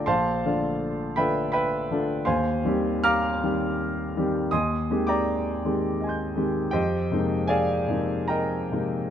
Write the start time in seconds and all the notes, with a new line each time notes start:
0.06 A#1 C5 F5 A5 C6
0.45 D3 A3 D4 F4
1.16 D3 A3 D4 F4 B4 E5 G5 B5
1.52 B4 E5 G5 B5
1.91 D3 A3 D4 F4
2.25 D#2 C5 F5 G#5 C6
2.64 D#3 G3 C4 G4
3.04 F5 A#5 D6 F6
3.43 D#3 G3 C4 G4
4.17 D#3 G3 C4 G4
4.51 D#2 D#5 G#5 C6 D#6
4.90 D#3 G#3 C4 G4
5.07 D5 G5 A#5 D6
5.65 D#3 G#3 C4 G4
6.00 D#5 G#5
6.07 C6 G6
6.36 D#3 G#3 C4 G4
6.71 F2 G4 C5 D#5 G5
7.11 C3 G#3 A#3 D#4
7.47 G#4 D5 F5 G#5
7.88 C3 G#3 A#3 D#4
8.28 A#4 D#5 G5 A#5
8.72 C3 G#3 A#3 D#4